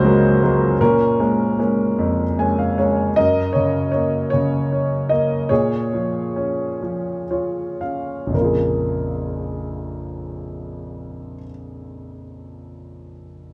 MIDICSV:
0, 0, Header, 1, 2, 480
1, 0, Start_track
1, 0, Key_signature, -5, "minor"
1, 0, Tempo, 780234
1, 490, Time_signature, 6, 3, 24, 8
1, 2897, Tempo, 795756
1, 3377, Tempo, 848656
1, 3857, Tempo, 936037
1, 4337, Tempo, 1045296
1, 4817, Tempo, 1071429
1, 6257, Tempo, 1113173
1, 7112, End_track
2, 0, Start_track
2, 0, Title_t, "Grand piano"
2, 0, Program_c, 0, 0
2, 0, Control_c, 0, 64, 127
2, 0, Note_on_c, 0, 37, 61
2, 0, Note_on_c, 0, 42, 59
2, 0, Note_on_c, 0, 54, 51
2, 0, Note_on_c, 0, 56, 48
2, 0, Note_on_c, 0, 58, 55
2, 0, Note_on_c, 0, 65, 58
2, 0, Note_on_c, 0, 66, 65
2, 0, Note_on_c, 0, 72, 89
2, 0, Note_on_c, 0, 73, 73
2, 0, Note_on_c, 0, 75, 91
2, 27, Note_off_c, 0, 54, 0
2, 27, Note_on_c, 0, 54, 49
2, 28, Note_off_c, 0, 56, 0
2, 28, Note_on_c, 0, 56, 46
2, 32, Note_off_c, 0, 58, 0
2, 32, Note_on_c, 0, 58, 53
2, 252, Note_off_c, 0, 54, 0
2, 253, Note_off_c, 0, 56, 0
2, 256, Note_off_c, 0, 58, 0
2, 261, Note_on_c, 0, 54, 46
2, 262, Note_on_c, 0, 56, 45
2, 265, Note_on_c, 0, 58, 55
2, 448, Note_off_c, 0, 54, 0
2, 449, Note_off_c, 0, 56, 0
2, 451, Note_off_c, 0, 58, 0
2, 471, Note_off_c, 0, 42, 0
2, 472, Note_off_c, 0, 37, 0
2, 474, Note_off_c, 0, 66, 0
2, 496, Note_on_c, 0, 46, 58
2, 497, Note_on_c, 0, 70, 77
2, 498, Note_off_c, 0, 75, 0
2, 498, Control_c, 0, 64, 0
2, 499, Note_off_c, 0, 65, 0
2, 499, Note_off_c, 0, 73, 0
2, 504, Note_on_c, 0, 61, 60
2, 516, Note_off_c, 0, 72, 0
2, 590, Control_c, 0, 64, 127
2, 730, Note_off_c, 0, 61, 0
2, 735, Note_on_c, 0, 56, 44
2, 737, Note_on_c, 0, 58, 40
2, 739, Note_on_c, 0, 61, 47
2, 969, Note_off_c, 0, 56, 0
2, 972, Note_off_c, 0, 58, 0
2, 974, Note_off_c, 0, 61, 0
2, 978, Note_on_c, 0, 56, 43
2, 981, Note_on_c, 0, 58, 38
2, 983, Note_on_c, 0, 61, 47
2, 1222, Note_on_c, 0, 41, 50
2, 1370, Note_off_c, 0, 56, 0
2, 1372, Note_off_c, 0, 58, 0
2, 1373, Note_off_c, 0, 61, 0
2, 1468, Note_on_c, 0, 56, 37
2, 1471, Note_on_c, 0, 58, 33
2, 1471, Note_on_c, 0, 80, 50
2, 1474, Note_on_c, 0, 61, 39
2, 1582, Note_off_c, 0, 80, 0
2, 1591, Note_on_c, 0, 77, 46
2, 1689, Note_off_c, 0, 70, 0
2, 1701, Note_off_c, 0, 56, 0
2, 1702, Note_off_c, 0, 77, 0
2, 1703, Note_off_c, 0, 58, 0
2, 1704, Note_off_c, 0, 61, 0
2, 1710, Note_on_c, 0, 56, 34
2, 1710, Note_on_c, 0, 73, 50
2, 1712, Note_on_c, 0, 58, 33
2, 1714, Note_on_c, 0, 61, 38
2, 1901, Note_off_c, 0, 56, 0
2, 1903, Note_off_c, 0, 58, 0
2, 1903, Note_off_c, 0, 61, 0
2, 1927, Note_off_c, 0, 41, 0
2, 1927, Note_off_c, 0, 46, 0
2, 1932, Note_off_c, 0, 73, 0
2, 1945, Note_on_c, 0, 75, 74
2, 1951, Note_on_c, 0, 42, 43
2, 1954, Note_on_c, 0, 70, 52
2, 1957, Control_c, 0, 64, 0
2, 2075, Control_c, 0, 64, 127
2, 2169, Note_on_c, 0, 73, 55
2, 2188, Note_on_c, 0, 49, 37
2, 2192, Note_off_c, 0, 75, 0
2, 2400, Note_off_c, 0, 73, 0
2, 2409, Note_on_c, 0, 73, 55
2, 2429, Note_on_c, 0, 58, 40
2, 2637, Note_off_c, 0, 70, 0
2, 2637, Note_off_c, 0, 73, 0
2, 2647, Note_on_c, 0, 73, 67
2, 2656, Note_off_c, 0, 49, 0
2, 2665, Note_on_c, 0, 49, 40
2, 2903, Note_on_c, 0, 61, 41
2, 3129, Note_on_c, 0, 75, 59
2, 3131, Note_off_c, 0, 58, 0
2, 3140, Note_on_c, 0, 58, 40
2, 3143, Note_off_c, 0, 73, 0
2, 3353, Note_off_c, 0, 42, 0
2, 3358, Note_off_c, 0, 49, 0
2, 3365, Note_off_c, 0, 61, 0
2, 3369, Note_on_c, 0, 73, 67
2, 3372, Note_off_c, 0, 58, 0
2, 3378, Note_on_c, 0, 46, 52
2, 3378, Note_on_c, 0, 68, 46
2, 3381, Note_off_c, 0, 75, 0
2, 3383, Control_c, 0, 64, 0
2, 3486, Control_c, 0, 64, 127
2, 3620, Note_on_c, 0, 53, 40
2, 3862, Note_on_c, 0, 61, 44
2, 4090, Note_off_c, 0, 53, 0
2, 4098, Note_on_c, 0, 53, 38
2, 4313, Note_off_c, 0, 73, 0
2, 4317, Note_off_c, 0, 68, 0
2, 4345, Note_on_c, 0, 65, 35
2, 4345, Note_on_c, 0, 73, 41
2, 4558, Note_off_c, 0, 73, 0
2, 4569, Note_off_c, 0, 61, 0
2, 4575, Note_on_c, 0, 77, 38
2, 4576, Note_on_c, 0, 61, 28
2, 4785, Note_on_c, 0, 34, 29
2, 4799, Note_off_c, 0, 46, 0
2, 4800, Note_on_c, 0, 41, 28
2, 4802, Note_off_c, 0, 53, 0
2, 4803, Note_off_c, 0, 77, 0
2, 4807, Note_off_c, 0, 65, 0
2, 4813, Note_off_c, 0, 61, 0
2, 4817, Note_on_c, 0, 49, 28
2, 4821, Note_on_c, 0, 70, 45
2, 4823, Control_c, 0, 64, 0
2, 4832, Note_on_c, 0, 58, 28
2, 4849, Note_on_c, 0, 65, 28
2, 4866, Note_on_c, 0, 68, 32
2, 4900, Control_c, 0, 64, 127
2, 6158, Note_off_c, 0, 34, 0
2, 6173, Note_off_c, 0, 41, 0
2, 6190, Note_off_c, 0, 49, 0
2, 6194, Note_off_c, 0, 70, 0
2, 6205, Note_off_c, 0, 58, 0
2, 6222, Note_off_c, 0, 65, 0
2, 6238, Note_off_c, 0, 68, 0
2, 7112, End_track
0, 0, End_of_file